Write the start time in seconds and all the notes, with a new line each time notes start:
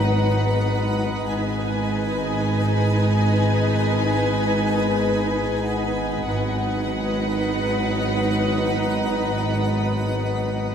Already playing: G#1 G#2 D#3 F#3 B3 D#4 B4 D#5 F#5 A#5 B5 D#6
1.26 G#1 G#2 D#3 G#3 B3 D#4 B4 D#5 G#5
5.63 F#5
6.26 G#1 G#2 D#3 F#3 B3 D#4 B4 D#5 F#5
8.78 B4 A#5